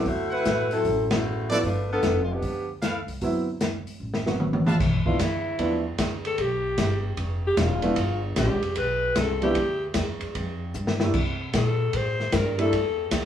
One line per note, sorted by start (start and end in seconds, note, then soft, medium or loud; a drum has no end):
0.06 0.42 D2 medium
0.06 0.31 A3 medium
0.06 0.31 E4 medium
0.06 0.31 F#4 medium
0.06 0.31 C5 medium
0.06 kick soft
0.06 open hi-hat soft
0.30 0.71 A3 medium
0.30 0.81 C4 medium
0.30 0.81 E4 medium
0.30 0.71 E4 medium
0.30 0.71 F#4 medium
0.30 0.81 B4 medium
0.30 0.71 B4 loud
0.30 0.81 F#5 medium
0.45 0.82 A2 medium
0.45 snare medium
0.45 closed hi-hat medium
0.71 1.08 F#3 medium
0.71 1.08 C4 medium
0.71 1.08 E4 medium
0.71 1.08 A4 medium
0.71 open hi-hat soft
0.85 1.60 A1 medium
0.85 kick soft
0.85 open hi-hat soft
1.11 1.51 A3 medium
1.11 1.51 E4 medium
1.11 1.50 F#4 medium
1.11 1.51 C5 medium
1.11 snare medium
1.11 ride medium
1.50 1.62 F3 medium
1.50 1.62 A3 medium
1.50 1.62 B3 medium
1.50 1.57 C4 medium
1.50 1.59 E4 medium
1.50 1.63 E4 medium
1.50 1.57 F#4 medium
1.50 1.59 A4 medium
1.50 1.57 A4 medium
1.50 1.59 B4 medium
1.50 1.59 D5 loud
1.50 1.58 D5 medium
1.63 2.00 G1 medium
1.63 1.88 A3 medium
1.63 1.88 D4 medium
1.63 1.88 F4 medium
1.63 1.88 B4 medium
1.63 kick soft
1.63 open hi-hat soft
1.92 2.19 F3 medium
1.92 2.19 B3 medium
1.92 2.19 D4 medium
1.92 2.19 A4 medium
2.03 2.40 F1 medium
2.03 snare medium
2.03 closed hi-hat medium
2.22 2.30 F4 medium
2.32 2.70 F3 medium
2.32 2.70 B3 medium
2.32 2.70 D4 medium
2.32 2.70 G4 medium
2.42 3.04 D2 medium
2.42 kick soft
2.42 open hi-hat soft
2.81 2.99 E4 medium
2.81 2.99 A4 medium
2.81 2.99 B4 medium
2.81 2.99 F5 medium
2.81 snare medium
2.81 closed hi-hat medium
3.07 3.20 C2 medium
3.07 open hi-hat soft
3.21 3.83 D2 medium
3.21 3.45 F#3 medium
3.21 3.45 B3 medium
3.21 3.46 C4 soft
3.21 3.46 E4 medium
3.21 kick soft
3.21 open hi-hat soft
3.61 snare medium
3.61 closed hi-hat soft
3.86 muted upright bass stroke soft
3.86 open hi-hat soft
4.00 4.75 A1 medium
4.14 snare medium
4.26 4.77 F#3 medium
4.26 4.77 B3 soft
4.26 4.77 C4 soft
4.26 4.77 F#4 medium
4.26 snare medium
4.40 mid tom medium
4.53 mid tom medium
4.66 4.75 G3 medium
4.66 4.75 F4 medium
4.66 4.75 B4 medium
4.66 4.75 E5 medium
4.66 4.75 A5 medium
4.66 mid tom medium
4.80 4.94 B1 medium
4.80 kick medium
4.80 snare soft
4.80 crash medium
4.92 5.05 G1 medium
5.05 5.18 F1 medium
5.05 5.18 F3 soft
5.05 5.18 A3 soft
5.05 5.18 B3 soft
5.05 5.18 D4 soft
5.05 5.18 E4 medium
5.05 5.23 F4 medium
5.05 kick medium
5.19 5.58 D2 medium
5.19 5.86 E4 medium
5.19 kick soft
5.19 snare medium
5.19 hi-hat pedal medium
5.19 ride medium
5.59 5.97 E2 medium
5.59 5.82 F3 medium
5.59 5.82 A3 soft
5.59 5.82 B3 soft
5.59 5.83 D4 soft
5.59 5.83 E4 medium
5.59 kick soft
5.59 ride medium
5.98 6.37 D2 medium
5.98 kick soft
5.98 snare medium
5.98 hi-hat pedal soft
5.98 ride medium
6.25 6.42 A4 loud
6.25 ride soft
6.38 6.77 B1 medium
6.38 7.05 G4 medium
6.38 kick soft
6.38 ride medium
6.78 7.16 G1 medium
6.78 kick soft
6.78 snare medium
6.78 hi-hat pedal medium
6.78 ride medium
7.17 7.56 F1 medium
7.17 kick soft
7.17 ride medium
7.47 7.62 G4 medium
7.57 7.95 E1 loud
7.57 8.24 F4 medium
7.57 kick soft
7.57 snare medium
7.57 hi-hat pedal medium
7.57 ride medium
7.82 7.95 F3 medium
7.82 7.95 A3 medium
7.82 7.95 B3 medium
7.82 7.95 D4 soft
7.82 7.95 E4 medium
7.82 ride soft
7.96 8.35 G1 medium
7.96 kick soft
7.96 ride medium
8.36 8.48 A1 medium
8.36 8.79 G4 medium
8.36 kick soft
8.36 snare medium
8.36 hi-hat pedal medium
8.36 ride medium
8.48 8.61 G1 medium
8.62 8.74 F1 medium
8.62 ride soft
8.75 9.14 B1 medium
8.75 9.20 B4 loud
8.75 kick soft
8.75 ride medium
9.16 9.54 C2 medium
9.16 9.43 A4 medium
9.16 kick soft
9.16 snare medium
9.16 hi-hat pedal medium
9.16 ride medium
9.42 9.54 F3 medium
9.42 9.54 A3 medium
9.42 9.55 B3 medium
9.42 9.54 D4 medium
9.42 9.55 E4 medium
9.42 9.92 G4 medium
9.42 ride soft
9.55 9.94 D2 medium
9.55 kick soft
9.55 ride medium
9.94 10.19 E2 medium
9.94 kick soft
9.94 snare medium
9.94 hi-hat pedal medium
9.94 ride medium
10.21 muted upright bass stroke soft
10.21 ride soft
10.35 10.73 F2 medium
10.35 kick soft
10.35 ride medium
10.74 11.12 G2 medium
10.74 hi-hat pedal medium
10.87 snare medium
11.00 11.13 G3 medium
11.00 11.13 A3 medium
11.00 11.13 A#3 medium
11.00 11.13 D4 soft
11.00 11.14 E4 medium
11.00 snare medium
11.14 11.52 C3 medium
11.14 kick medium
11.14 crash medium
11.53 11.92 A#2 medium
11.53 11.98 A4 medium
11.53 kick soft
11.53 snare medium
11.53 hi-hat pedal medium
11.53 ride medium
11.93 12.32 A2 medium
11.93 12.37 C5 loud
11.93 kick soft
11.93 ride medium
12.20 snare soft
12.32 12.71 G2 loud
12.32 12.60 A#4 medium
12.32 kick soft
12.32 snare medium
12.32 hi-hat pedal medium
12.32 ride medium
12.58 12.70 G3 medium
12.58 12.71 A3 medium
12.58 12.71 A#3 medium
12.58 12.71 D4 medium
12.58 12.71 E4 medium
12.58 13.09 A4 loud
12.58 ride soft
12.72 13.11 E2 medium
12.72 kick soft
12.72 ride medium
13.11 13.25 D2 loud
13.11 kick soft
13.11 snare medium
13.11 hi-hat pedal medium
13.11 ride medium